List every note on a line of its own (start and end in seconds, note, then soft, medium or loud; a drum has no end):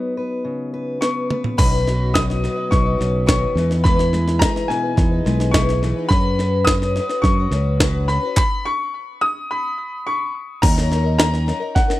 0.00 2.14 F#3 medium
0.00 1.00 B3 medium
0.00 1.31 D#4 medium
0.00 0.16 B4 medium
0.17 0.72 B4 medium
0.44 1.58 C#3 medium
0.74 1.02 B4 medium
1.01 3.84 B3 medium
1.01 1.30 B4 medium
1.01 1.54 C#6 medium
1.01 snare soft
1.30 1.56 B4 medium
1.30 mid tom medium
1.44 floor tom medium
1.57 2.47 B1 medium
1.57 1.86 B2 medium
1.57 2.71 B2 medium
1.57 1.87 D#3 medium
1.57 1.84 F#3 medium
1.57 1.85 C#4 medium
1.57 1.86 D#4 medium
1.57 1.87 B4 medium
1.57 2.17 B5 medium
1.57 kick loud
1.57 snare soft
1.57 crash medium
1.85 2.13 F#3 soft
1.85 2.14 C#4 medium
1.85 2.14 D#4 medium
1.85 3.54 F#4 medium
1.85 2.14 B4 medium
1.85 snare soft
2.13 2.43 B2 medium
2.13 2.43 D#3 medium
2.13 2.41 F#3 medium
2.13 3.57 F#3 medium
2.13 2.42 C#4 medium
2.13 2.43 D#4 medium
2.13 2.44 B4 medium
2.13 2.73 D#6 medium
2.13 kick medium
2.13 snare loud
2.30 snare soft
2.42 2.57 F#3 medium
2.42 2.56 C#4 medium
2.42 2.55 D#4 medium
2.42 2.54 B4 medium
2.42 snare soft
2.46 4.41 B4 medium
2.56 2.86 F#3 soft
2.56 2.85 C#4 soft
2.56 2.84 D#4 soft
2.56 2.82 B4 soft
2.71 2.94 B1 loud
2.71 3.54 B2 medium
2.71 3.26 C#6 medium
2.71 kick medium
2.71 snare soft
2.83 2.97 F#3 soft
2.83 2.99 C#4 soft
2.83 2.99 D#4 soft
2.83 2.99 B4 soft
2.98 3.44 B1 medium
2.98 3.27 C#3 medium
2.98 3.26 F#3 medium
2.98 3.26 C#4 medium
2.98 3.26 D#4 soft
2.98 3.27 B4 medium
2.98 snare soft
3.26 3.56 B2 medium
3.26 3.56 D#3 medium
3.26 3.55 F#3 medium
3.26 3.56 C#4 medium
3.26 3.56 D#4 medium
3.26 3.57 B4 medium
3.26 3.80 C#6 medium
3.26 kick medium
3.26 snare loud
3.55 4.44 E2 medium
3.55 5.79 E3 medium
3.55 3.70 G#3 soft
3.55 3.71 B3 medium
3.55 3.70 D#4 medium
3.55 3.68 B4 medium
3.55 snare soft
3.69 3.84 B3 soft
3.69 3.85 D#4 medium
3.69 3.84 B4 medium
3.69 snare soft
3.84 4.13 E3 medium
3.84 4.10 G#3 medium
3.84 4.12 B3 medium
3.84 4.13 D#4 medium
3.84 5.54 E4 medium
3.84 4.14 B4 medium
3.84 4.37 B5 medium
3.84 kick loud
3.84 snare soft
3.99 snare soft
4.11 4.40 G#3 medium
4.11 5.24 G#3 medium
4.11 4.41 B3 medium
4.11 4.42 D#4 medium
4.11 4.42 B4 medium
4.11 snare soft
4.28 snare soft
4.39 4.69 E3 medium
4.39 4.67 G#3 medium
4.39 4.68 B3 medium
4.39 4.69 D#4 medium
4.39 8.09 G#4 medium
4.39 4.71 B4 medium
4.39 4.70 A#5 medium
4.39 kick medium
4.39 snare loud
4.56 snare soft
4.68 5.79 B2 medium
4.68 4.83 G#3 medium
4.68 4.84 B3 medium
4.68 4.84 D#4 medium
4.68 4.82 B4 medium
4.68 5.50 G#5 medium
4.68 snare soft
4.83 5.13 B3 soft
4.83 5.12 D#4 soft
4.83 5.10 B4 soft
4.97 5.20 E2 medium
4.97 5.79 D#4 soft
4.97 kick loud
4.97 snare soft
5.11 5.25 B3 soft
5.11 5.26 D#4 soft
5.11 5.26 B4 soft
5.25 5.92 B1 medium
5.25 5.40 G#3 medium
5.25 5.79 G#3 medium
5.25 5.41 B3 medium
5.25 5.39 D#4 medium
5.25 5.37 B4 medium
5.25 snare soft
5.39 5.52 B3 soft
5.39 5.53 D#4 soft
5.39 5.54 B4 soft
5.39 snare soft
5.51 5.82 E3 medium
5.51 5.80 G#3 medium
5.51 5.81 B3 medium
5.51 5.83 D#4 medium
5.51 5.83 B4 medium
5.51 6.11 C#6 medium
5.51 kick medium
5.51 snare medium
5.56 5.80 E4 medium
5.69 snare soft
5.81 6.08 E3 medium
5.81 5.96 G#3 soft
5.81 5.97 B3 medium
5.81 5.97 D#4 medium
5.81 5.95 B4 medium
5.81 snare soft
5.96 6.12 B3 soft
5.96 6.12 D#4 medium
5.96 6.11 B4 medium
6.09 6.99 F#2 loud
6.09 6.37 F#3 medium
6.09 6.38 C#4 medium
6.09 6.40 F#4 medium
6.09 6.68 B5 loud
6.09 kick loud
6.09 snare soft
6.13 6.40 B4 medium
6.38 6.66 F#3 medium
6.38 6.67 C#4 medium
6.38 6.67 F#4 medium
6.38 6.68 B4 medium
6.38 snare soft
6.65 6.95 F#3 medium
6.65 6.96 C#4 medium
6.65 6.96 F#4 medium
6.65 7.24 D#6 loud
6.65 kick medium
6.65 snare loud
6.69 6.97 B4 medium
6.82 snare soft
6.96 7.10 F#3 medium
6.96 7.11 C#4 medium
6.96 7.11 F#4 medium
6.96 7.09 B4 medium
6.96 snare soft
7.09 7.40 C#4 soft
7.09 7.38 F#4 soft
7.09 7.36 B4 soft
7.09 snare soft
7.22 7.46 F#2 loud
7.22 8.10 C#6 medium
7.22 kick medium
7.22 snare soft
7.37 7.51 C#4 soft
7.37 7.52 F#4 soft
7.37 7.52 B4 medium
7.51 8.17 C#2 medium
7.51 7.79 F#3 medium
7.51 7.80 C#4 medium
7.51 7.80 F#4 medium
7.51 7.81 B4 medium
7.51 snare soft
7.80 8.07 F#3 medium
7.80 8.08 C#4 medium
7.80 8.09 F#4 medium
7.80 8.10 B4 medium
7.80 kick medium
7.80 snare loud
8.08 8.23 F#3 medium
8.08 8.23 C#4 medium
8.08 8.23 F#4 medium
8.08 8.22 B4 medium
8.08 8.36 B5 medium
8.08 snare soft
8.23 8.39 C#4 medium
8.23 8.38 F#4 medium
8.23 8.37 B4 medium
8.37 8.66 B5 medium
8.37 kick loud
8.37 clap medium
8.65 9.24 C#6 medium
9.21 9.51 D#6 loud
9.51 10.31 B5 medium
10.07 10.59 C#6 medium
10.62 11.51 D#2 loud
10.62 10.91 D#3 medium
10.62 10.88 F#3 medium
10.62 10.89 C#4 medium
10.62 10.90 D#4 medium
10.62 10.92 A#4 medium
10.62 11.17 A#5 loud
10.62 kick loud
10.62 snare soft
10.62 crash loud
10.78 snare soft
10.89 11.04 F#3 medium
10.89 11.05 C#4 medium
10.89 11.04 D#4 medium
10.89 11.03 A#4 medium
10.89 snare soft
11.04 11.19 C#4 soft
11.04 11.19 D#4 medium
11.04 11.19 A#4 medium
11.18 11.47 D#3 medium
11.18 11.45 F#3 medium
11.18 11.46 C#4 medium
11.18 11.47 D#4 medium
11.18 11.48 A#4 medium
11.18 11.71 A#5 loud
11.18 snare loud
11.34 snare soft
11.46 11.61 F#3 medium
11.46 11.61 C#4 medium
11.46 11.60 D#4 medium
11.46 11.59 A#4 medium
11.46 snare soft
11.60 11.90 C#4 soft
11.60 11.89 D#4 soft
11.60 11.87 A#4 medium
11.75 12.00 F#5 medium
11.75 kick medium
11.75 snare soft
11.88 12.00 C#4 soft
11.88 12.00 D#4 soft
11.88 12.00 A#4 medium
11.88 snare soft